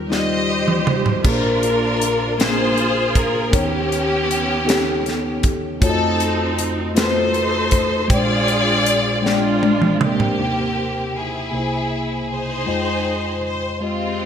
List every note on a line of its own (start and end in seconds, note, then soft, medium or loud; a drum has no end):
0.00 1.21 D#2 medium
0.00 1.21 D#3 medium
0.00 0.09 G3 medium
0.00 0.10 D#4 medium
0.00 0.11 F4 medium
0.00 1.26 C5 medium
0.09 0.78 G3 medium
0.09 0.79 D#4 medium
0.09 0.79 F4 medium
0.09 1.22 G4 medium
0.09 1.22 C5 medium
0.09 0.18 D5 medium
0.09 0.93 D#5 medium
0.09 snare soft
0.18 0.83 D#5 medium
0.68 mid tom medium
0.87 mid tom medium
1.06 floor tom medium
1.23 3.49 A#1 medium
1.23 3.49 A#2 medium
1.23 1.93 A#3 medium
1.23 1.31 C#4 medium
1.23 2.36 D4 medium
1.23 2.36 F4 medium
1.23 1.94 G#4 medium
1.23 2.36 A#4 loud
1.23 1.94 C5 medium
1.23 kick loud
1.23 crash medium
1.31 1.97 D4 medium
1.63 closed hi-hat soft
2.02 closed hi-hat medium
2.38 3.07 A#3 medium
2.38 3.08 D4 medium
2.38 3.50 F4 medium
2.38 3.08 G#4 medium
2.38 3.50 G#4 medium
2.38 3.09 A#4 medium
2.38 3.15 C5 loud
2.38 snare medium
2.38 closed hi-hat medium
2.77 closed hi-hat soft
3.14 3.53 A#4 medium
3.14 kick medium
3.14 closed hi-hat medium
3.51 5.77 D#2 medium
3.51 5.77 D#3 medium
3.51 4.21 B3 medium
3.51 4.21 D#4 medium
3.51 4.22 G4 medium
3.51 5.44 G4 medium
3.51 4.22 C#5 medium
3.51 kick loud
3.51 closed hi-hat medium
3.55 5.41 B3 medium
3.55 5.41 C#4 medium
3.92 closed hi-hat soft
4.31 closed hi-hat medium
4.65 5.35 B3 medium
4.65 5.35 D#4 medium
4.65 5.36 G4 medium
4.65 5.36 A4 medium
4.65 closed hi-hat medium
4.70 snare medium
5.06 snare soft
5.06 closed hi-hat soft
5.43 kick medium
5.43 closed hi-hat medium
5.80 8.06 F2 medium
5.80 6.50 A3 medium
5.80 6.93 C4 medium
5.80 6.93 D#4 medium
5.80 6.50 F4 medium
5.80 6.51 F#4 medium
5.80 6.54 A4 loud
5.80 5.89 C#5 medium
5.80 kick loud
5.80 closed hi-hat medium
5.90 6.54 D#5 medium
6.20 closed hi-hat soft
6.59 closed hi-hat medium
6.94 7.64 A3 medium
6.94 8.07 D#4 medium
6.94 7.64 F4 medium
6.94 7.65 F#4 medium
6.94 8.07 A4 medium
6.94 7.03 B4 medium
6.94 8.06 C5 medium
6.94 snare medium
6.94 closed hi-hat medium
7.04 7.69 C5 medium
7.34 closed hi-hat soft
7.71 kick medium
7.71 closed hi-hat medium
8.08 10.34 A#1 medium
8.08 10.34 A#2 medium
8.08 8.78 G#3 medium
8.08 8.16 C#4 medium
8.08 8.79 C5 medium
8.08 9.63 D5 loud
8.08 8.79 G5 medium
8.08 kick loud
8.08 closed hi-hat medium
8.12 8.82 D4 medium
8.12 9.25 F4 medium
8.12 9.59 G#4 medium
8.48 closed hi-hat soft
8.86 closed hi-hat medium
9.22 9.92 G#3 medium
9.22 9.93 D4 medium
9.22 9.97 F4 medium
9.22 9.94 D5 medium
9.22 9.93 G5 medium
9.26 10.36 G#3 medium
9.26 10.36 D4 medium
9.26 snare medium
9.63 high tom medium
9.82 mid tom medium
10.01 11.12 A#3 medium
10.01 11.12 C4 medium
10.01 11.15 G4 medium
10.01 mid tom medium
10.20 floor tom medium
10.37 11.49 D#2 soft
10.37 11.49 C3 soft
10.37 11.07 A#3 medium
10.37 11.07 D#4 soft
10.37 11.08 G4 soft
10.37 11.08 C5 medium
11.17 12.27 E4 soft
11.17 12.30 G#4 medium
11.51 12.63 C2 soft
11.51 12.63 C3 soft
11.51 12.21 A#3 soft
11.51 11.59 D#4 soft
11.51 12.22 G#4 soft
11.51 12.23 C5 medium
11.59 12.25 E4 soft
12.32 13.41 D#4 medium
12.32 13.41 G#4 medium
12.32 13.44 C5 medium
12.65 14.26 F2 soft
12.65 13.35 G#3 medium
12.65 13.36 F4 medium
12.65 13.37 D#5 medium
12.65 13.36 G5 medium
13.45 13.80 C5 medium
13.80 14.26 G#3 medium
13.80 14.26 G#3 soft
13.80 14.26 C4 medium
13.80 14.26 F4 soft
13.80 14.26 F4 medium
13.80 14.26 G4 soft
13.80 14.26 D#5 medium